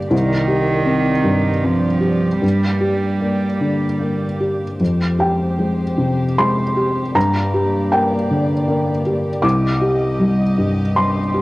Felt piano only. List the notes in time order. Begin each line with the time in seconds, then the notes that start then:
Already playing: D3 A#3 G4
0.10 C2
0.48 G4
0.86 C4
1.24 G2
1.62 C4
2.00 G4
2.41 G2
2.81 G4
3.20 A#3
3.61 D3
4.00 A#3
4.40 G4
4.80 F2
5.19 G4 G5
5.59 G#3
5.98 C3
6.38 G#3 C6
6.76 G4
7.15 G2 A#5
7.54 G4
7.92 A#3 G5
8.31 D3
8.68 A#3
9.06 G4
9.42 C2 D6
9.81 G4
10.19 G3
10.58 G2
10.96 G3 C6
11.34 G4